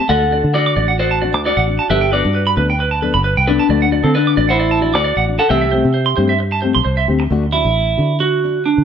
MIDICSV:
0, 0, Header, 1, 7, 480
1, 0, Start_track
1, 0, Tempo, 450450
1, 98, Time_signature, 4, 2, 24, 8
1, 9420, End_track
2, 0, Start_track
2, 0, Title_t, "Clean electric guitar"
2, 0, Program_c, 0, 27
2, 105, Note_on_c, 0, 74, 76
2, 193, Note_off_c, 0, 74, 0
2, 346, Note_on_c, 0, 74, 66
2, 434, Note_off_c, 0, 74, 0
2, 577, Note_on_c, 0, 74, 59
2, 668, Note_off_c, 0, 74, 0
2, 707, Note_on_c, 0, 86, 76
2, 786, Note_off_c, 0, 86, 0
2, 815, Note_on_c, 0, 74, 80
2, 907, Note_off_c, 0, 74, 0
2, 938, Note_on_c, 0, 78, 62
2, 1021, Note_off_c, 0, 78, 0
2, 1061, Note_on_c, 0, 74, 70
2, 1151, Note_off_c, 0, 74, 0
2, 1183, Note_on_c, 0, 81, 79
2, 1264, Note_off_c, 0, 81, 0
2, 1296, Note_on_c, 0, 74, 64
2, 1388, Note_off_c, 0, 74, 0
2, 1430, Note_on_c, 0, 86, 71
2, 1509, Note_off_c, 0, 86, 0
2, 1550, Note_on_c, 0, 74, 75
2, 1637, Note_off_c, 0, 74, 0
2, 1672, Note_on_c, 0, 78, 75
2, 1751, Note_off_c, 0, 78, 0
2, 1906, Note_on_c, 0, 81, 84
2, 1987, Note_off_c, 0, 81, 0
2, 2020, Note_on_c, 0, 71, 75
2, 2111, Note_off_c, 0, 71, 0
2, 2144, Note_on_c, 0, 79, 71
2, 2226, Note_off_c, 0, 79, 0
2, 2255, Note_on_c, 0, 71, 64
2, 2348, Note_off_c, 0, 71, 0
2, 2501, Note_on_c, 0, 71, 60
2, 2592, Note_off_c, 0, 71, 0
2, 2628, Note_on_c, 0, 83, 82
2, 2708, Note_off_c, 0, 83, 0
2, 2741, Note_on_c, 0, 71, 83
2, 2832, Note_off_c, 0, 71, 0
2, 2873, Note_on_c, 0, 79, 67
2, 2952, Note_off_c, 0, 79, 0
2, 2985, Note_on_c, 0, 71, 72
2, 3074, Note_off_c, 0, 71, 0
2, 3102, Note_on_c, 0, 81, 84
2, 3185, Note_off_c, 0, 81, 0
2, 3224, Note_on_c, 0, 71, 63
2, 3314, Note_off_c, 0, 71, 0
2, 3344, Note_on_c, 0, 83, 73
2, 3426, Note_off_c, 0, 83, 0
2, 3455, Note_on_c, 0, 71, 84
2, 3548, Note_off_c, 0, 71, 0
2, 3594, Note_on_c, 0, 79, 79
2, 3672, Note_off_c, 0, 79, 0
2, 3830, Note_on_c, 0, 81, 81
2, 3910, Note_off_c, 0, 81, 0
2, 3942, Note_on_c, 0, 74, 73
2, 4033, Note_off_c, 0, 74, 0
2, 4071, Note_on_c, 0, 78, 71
2, 4150, Note_off_c, 0, 78, 0
2, 4180, Note_on_c, 0, 74, 66
2, 4271, Note_off_c, 0, 74, 0
2, 4422, Note_on_c, 0, 74, 66
2, 4513, Note_off_c, 0, 74, 0
2, 4552, Note_on_c, 0, 86, 78
2, 4631, Note_off_c, 0, 86, 0
2, 4659, Note_on_c, 0, 74, 90
2, 4751, Note_off_c, 0, 74, 0
2, 4782, Note_on_c, 0, 78, 68
2, 4864, Note_off_c, 0, 78, 0
2, 4898, Note_on_c, 0, 74, 69
2, 4990, Note_off_c, 0, 74, 0
2, 5021, Note_on_c, 0, 81, 86
2, 5104, Note_off_c, 0, 81, 0
2, 5137, Note_on_c, 0, 74, 66
2, 5229, Note_off_c, 0, 74, 0
2, 5261, Note_on_c, 0, 86, 77
2, 5343, Note_off_c, 0, 86, 0
2, 5374, Note_on_c, 0, 74, 80
2, 5467, Note_off_c, 0, 74, 0
2, 5510, Note_on_c, 0, 78, 70
2, 5589, Note_off_c, 0, 78, 0
2, 5741, Note_on_c, 0, 81, 90
2, 5824, Note_off_c, 0, 81, 0
2, 5853, Note_on_c, 0, 72, 76
2, 5946, Note_off_c, 0, 72, 0
2, 5982, Note_on_c, 0, 76, 71
2, 6064, Note_off_c, 0, 76, 0
2, 6090, Note_on_c, 0, 72, 68
2, 6184, Note_off_c, 0, 72, 0
2, 6329, Note_on_c, 0, 72, 62
2, 6423, Note_off_c, 0, 72, 0
2, 6456, Note_on_c, 0, 84, 79
2, 6540, Note_off_c, 0, 84, 0
2, 6571, Note_on_c, 0, 72, 81
2, 6664, Note_off_c, 0, 72, 0
2, 6703, Note_on_c, 0, 76, 69
2, 6784, Note_off_c, 0, 76, 0
2, 6949, Note_on_c, 0, 81, 83
2, 7028, Note_off_c, 0, 81, 0
2, 7052, Note_on_c, 0, 72, 66
2, 7145, Note_off_c, 0, 72, 0
2, 7188, Note_on_c, 0, 84, 72
2, 7267, Note_off_c, 0, 84, 0
2, 7295, Note_on_c, 0, 72, 82
2, 7387, Note_off_c, 0, 72, 0
2, 7427, Note_on_c, 0, 76, 73
2, 7507, Note_off_c, 0, 76, 0
2, 8018, Note_on_c, 0, 64, 77
2, 8695, Note_off_c, 0, 64, 0
2, 8740, Note_on_c, 0, 66, 79
2, 9185, Note_off_c, 0, 66, 0
2, 9223, Note_on_c, 0, 62, 55
2, 9420, Note_off_c, 0, 62, 0
2, 9420, End_track
3, 0, Start_track
3, 0, Title_t, "Clean electric guitar"
3, 0, Program_c, 1, 27
3, 97, Note_on_c, 1, 78, 100
3, 103, Note_on_c, 1, 69, 74
3, 548, Note_off_c, 1, 69, 0
3, 574, Note_off_c, 1, 78, 0
3, 578, Note_on_c, 1, 74, 87
3, 585, Note_on_c, 1, 66, 74
3, 1030, Note_off_c, 1, 66, 0
3, 1058, Note_on_c, 1, 72, 78
3, 1063, Note_on_c, 1, 66, 66
3, 1074, Note_off_c, 1, 74, 0
3, 1506, Note_off_c, 1, 72, 0
3, 1509, Note_off_c, 1, 66, 0
3, 1557, Note_on_c, 1, 66, 70
3, 1560, Note_on_c, 1, 74, 74
3, 1996, Note_off_c, 1, 74, 0
3, 1997, Note_off_c, 1, 66, 0
3, 2027, Note_on_c, 1, 67, 74
3, 2031, Note_on_c, 1, 76, 80
3, 2248, Note_off_c, 1, 76, 0
3, 2249, Note_off_c, 1, 67, 0
3, 2267, Note_on_c, 1, 66, 57
3, 2270, Note_on_c, 1, 74, 65
3, 2711, Note_off_c, 1, 74, 0
3, 2713, Note_off_c, 1, 66, 0
3, 3702, Note_on_c, 1, 71, 92
3, 3706, Note_on_c, 1, 62, 69
3, 4270, Note_off_c, 1, 62, 0
3, 4296, Note_off_c, 1, 71, 0
3, 4299, Note_on_c, 1, 60, 63
3, 4300, Note_on_c, 1, 69, 65
3, 4408, Note_off_c, 1, 69, 0
3, 4410, Note_off_c, 1, 60, 0
3, 4419, Note_on_c, 1, 71, 81
3, 4427, Note_on_c, 1, 62, 68
3, 4762, Note_off_c, 1, 71, 0
3, 4767, Note_off_c, 1, 62, 0
3, 4795, Note_on_c, 1, 72, 85
3, 4802, Note_on_c, 1, 64, 70
3, 5239, Note_off_c, 1, 72, 0
3, 5243, Note_off_c, 1, 64, 0
3, 5271, Note_on_c, 1, 66, 69
3, 5278, Note_on_c, 1, 74, 82
3, 5717, Note_off_c, 1, 66, 0
3, 5718, Note_off_c, 1, 74, 0
3, 5744, Note_on_c, 1, 69, 70
3, 5746, Note_on_c, 1, 78, 79
3, 5851, Note_off_c, 1, 78, 0
3, 5852, Note_off_c, 1, 69, 0
3, 5861, Note_on_c, 1, 67, 71
3, 5869, Note_on_c, 1, 76, 90
3, 7258, Note_off_c, 1, 67, 0
3, 7260, Note_off_c, 1, 76, 0
3, 9420, End_track
4, 0, Start_track
4, 0, Title_t, "Nylon-string guitar"
4, 0, Program_c, 2, 24
4, 83, Note_on_c, 2, 57, 67
4, 103, Note_on_c, 2, 66, 77
4, 241, Note_off_c, 2, 57, 0
4, 251, Note_off_c, 2, 66, 0
4, 329, Note_on_c, 2, 66, 51
4, 361, Note_on_c, 2, 62, 39
4, 484, Note_off_c, 2, 66, 0
4, 501, Note_off_c, 2, 62, 0
4, 814, Note_on_c, 2, 66, 52
4, 845, Note_on_c, 2, 62, 38
4, 967, Note_off_c, 2, 66, 0
4, 983, Note_off_c, 2, 62, 0
4, 1297, Note_on_c, 2, 66, 53
4, 1322, Note_on_c, 2, 62, 43
4, 1449, Note_off_c, 2, 66, 0
4, 1462, Note_off_c, 2, 62, 0
4, 1781, Note_on_c, 2, 66, 51
4, 1806, Note_on_c, 2, 62, 41
4, 1931, Note_off_c, 2, 66, 0
4, 1944, Note_off_c, 2, 62, 0
4, 2017, Note_on_c, 2, 55, 76
4, 2023, Note_on_c, 2, 59, 68
4, 2028, Note_on_c, 2, 62, 80
4, 2034, Note_on_c, 2, 69, 81
4, 2170, Note_off_c, 2, 55, 0
4, 2173, Note_off_c, 2, 59, 0
4, 2175, Note_off_c, 2, 62, 0
4, 2178, Note_off_c, 2, 69, 0
4, 2254, Note_on_c, 2, 69, 52
4, 2274, Note_on_c, 2, 62, 45
4, 2286, Note_on_c, 2, 59, 44
4, 2408, Note_off_c, 2, 69, 0
4, 2418, Note_off_c, 2, 62, 0
4, 2424, Note_off_c, 2, 59, 0
4, 2736, Note_on_c, 2, 69, 50
4, 2757, Note_on_c, 2, 62, 46
4, 2767, Note_on_c, 2, 59, 39
4, 2890, Note_off_c, 2, 69, 0
4, 2900, Note_off_c, 2, 62, 0
4, 2905, Note_off_c, 2, 59, 0
4, 3219, Note_on_c, 2, 69, 63
4, 3231, Note_on_c, 2, 62, 58
4, 3243, Note_on_c, 2, 59, 52
4, 3371, Note_off_c, 2, 69, 0
4, 3377, Note_off_c, 2, 62, 0
4, 3383, Note_off_c, 2, 59, 0
4, 3701, Note_on_c, 2, 69, 51
4, 3718, Note_on_c, 2, 62, 50
4, 3729, Note_on_c, 2, 59, 45
4, 3852, Note_off_c, 2, 69, 0
4, 3861, Note_off_c, 2, 62, 0
4, 3866, Note_off_c, 2, 59, 0
4, 3935, Note_on_c, 2, 57, 74
4, 3941, Note_on_c, 2, 62, 83
4, 3952, Note_on_c, 2, 66, 82
4, 4089, Note_off_c, 2, 57, 0
4, 4092, Note_off_c, 2, 62, 0
4, 4098, Note_off_c, 2, 66, 0
4, 4173, Note_on_c, 2, 66, 49
4, 4196, Note_on_c, 2, 62, 44
4, 4328, Note_off_c, 2, 66, 0
4, 4340, Note_off_c, 2, 62, 0
4, 4647, Note_on_c, 2, 66, 44
4, 4675, Note_on_c, 2, 62, 43
4, 4805, Note_off_c, 2, 66, 0
4, 4819, Note_off_c, 2, 62, 0
4, 5123, Note_on_c, 2, 66, 50
4, 5154, Note_on_c, 2, 62, 44
4, 5283, Note_off_c, 2, 66, 0
4, 5298, Note_off_c, 2, 62, 0
4, 5634, Note_on_c, 2, 62, 38
4, 5778, Note_off_c, 2, 62, 0
4, 5852, Note_on_c, 2, 52, 72
4, 5858, Note_on_c, 2, 57, 72
4, 5860, Note_on_c, 2, 60, 79
4, 5870, Note_on_c, 2, 67, 83
4, 6007, Note_off_c, 2, 52, 0
4, 6010, Note_off_c, 2, 57, 0
4, 6011, Note_off_c, 2, 60, 0
4, 6016, Note_off_c, 2, 67, 0
4, 6099, Note_on_c, 2, 67, 54
4, 6112, Note_on_c, 2, 60, 48
4, 6128, Note_on_c, 2, 57, 45
4, 6250, Note_off_c, 2, 67, 0
4, 6257, Note_off_c, 2, 60, 0
4, 6265, Note_off_c, 2, 57, 0
4, 6574, Note_on_c, 2, 67, 53
4, 6590, Note_on_c, 2, 60, 52
4, 6602, Note_on_c, 2, 57, 47
4, 6728, Note_off_c, 2, 67, 0
4, 6735, Note_off_c, 2, 60, 0
4, 6741, Note_off_c, 2, 57, 0
4, 7059, Note_on_c, 2, 67, 62
4, 7074, Note_on_c, 2, 60, 55
4, 7088, Note_on_c, 2, 57, 51
4, 7210, Note_off_c, 2, 67, 0
4, 7217, Note_off_c, 2, 60, 0
4, 7224, Note_off_c, 2, 57, 0
4, 7543, Note_on_c, 2, 67, 60
4, 7558, Note_on_c, 2, 60, 51
4, 7570, Note_on_c, 2, 57, 42
4, 7692, Note_off_c, 2, 67, 0
4, 7699, Note_off_c, 2, 60, 0
4, 7705, Note_off_c, 2, 57, 0
4, 7778, Note_on_c, 2, 57, 78
4, 7791, Note_on_c, 2, 62, 85
4, 7799, Note_on_c, 2, 66, 90
4, 7929, Note_off_c, 2, 57, 0
4, 7935, Note_off_c, 2, 62, 0
4, 7939, Note_off_c, 2, 66, 0
4, 8026, Note_on_c, 2, 66, 47
4, 8056, Note_on_c, 2, 62, 45
4, 8172, Note_off_c, 2, 66, 0
4, 8188, Note_off_c, 2, 62, 0
4, 8496, Note_on_c, 2, 66, 50
4, 8529, Note_on_c, 2, 62, 38
4, 8647, Note_off_c, 2, 66, 0
4, 8664, Note_off_c, 2, 62, 0
4, 8996, Note_on_c, 2, 62, 39
4, 9137, Note_off_c, 2, 62, 0
4, 9420, End_track
5, 0, Start_track
5, 0, Title_t, "Fingered electric bass"
5, 0, Program_c, 3, 33
5, 97, Note_on_c, 3, 38, 83
5, 436, Note_off_c, 3, 38, 0
5, 467, Note_on_c, 3, 50, 86
5, 791, Note_off_c, 3, 50, 0
5, 812, Note_on_c, 3, 33, 85
5, 1425, Note_off_c, 3, 33, 0
5, 1425, Note_on_c, 3, 38, 80
5, 1648, Note_off_c, 3, 38, 0
5, 1669, Note_on_c, 3, 33, 78
5, 1890, Note_off_c, 3, 33, 0
5, 2018, Note_on_c, 3, 31, 90
5, 2358, Note_off_c, 3, 31, 0
5, 2395, Note_on_c, 3, 43, 91
5, 2717, Note_off_c, 3, 43, 0
5, 2736, Note_on_c, 3, 38, 93
5, 3347, Note_on_c, 3, 31, 84
5, 3363, Note_off_c, 3, 38, 0
5, 3569, Note_off_c, 3, 31, 0
5, 3588, Note_on_c, 3, 36, 86
5, 3810, Note_off_c, 3, 36, 0
5, 3930, Note_on_c, 3, 38, 88
5, 4273, Note_off_c, 3, 38, 0
5, 4302, Note_on_c, 3, 50, 91
5, 4630, Note_off_c, 3, 50, 0
5, 4659, Note_on_c, 3, 33, 98
5, 5269, Note_off_c, 3, 33, 0
5, 5269, Note_on_c, 3, 38, 82
5, 5490, Note_off_c, 3, 38, 0
5, 5501, Note_on_c, 3, 33, 78
5, 5726, Note_off_c, 3, 33, 0
5, 5859, Note_on_c, 3, 36, 84
5, 6198, Note_off_c, 3, 36, 0
5, 6227, Note_on_c, 3, 48, 90
5, 6552, Note_off_c, 3, 48, 0
5, 6580, Note_on_c, 3, 43, 92
5, 7198, Note_on_c, 3, 36, 83
5, 7214, Note_off_c, 3, 43, 0
5, 7297, Note_off_c, 3, 36, 0
5, 7301, Note_on_c, 3, 36, 76
5, 7517, Note_off_c, 3, 36, 0
5, 7543, Note_on_c, 3, 38, 83
5, 7757, Note_off_c, 3, 38, 0
5, 7783, Note_on_c, 3, 38, 87
5, 8119, Note_off_c, 3, 38, 0
5, 8148, Note_on_c, 3, 33, 81
5, 8471, Note_off_c, 3, 33, 0
5, 8506, Note_on_c, 3, 50, 81
5, 9307, Note_off_c, 3, 50, 0
5, 9353, Note_on_c, 3, 50, 76
5, 9420, Note_off_c, 3, 50, 0
5, 9420, End_track
6, 0, Start_track
6, 0, Title_t, "Muted clean electric guitar strokes"
6, 6821, Note_on_c, 9, 29, 72
6, 6928, Note_off_c, 9, 29, 0
6, 7669, Note_on_c, 9, 29, 87
6, 7775, Note_off_c, 9, 29, 0
6, 9420, End_track
7, 0, Start_track
7, 0, Title_t, "Muted nylon-string guitar strokes"
7, 93, Note_on_c, 9, 29, 78
7, 199, Note_off_c, 9, 29, 0
7, 5604, Note_on_c, 9, 29, 54
7, 5710, Note_off_c, 9, 29, 0
7, 9420, End_track
0, 0, End_of_file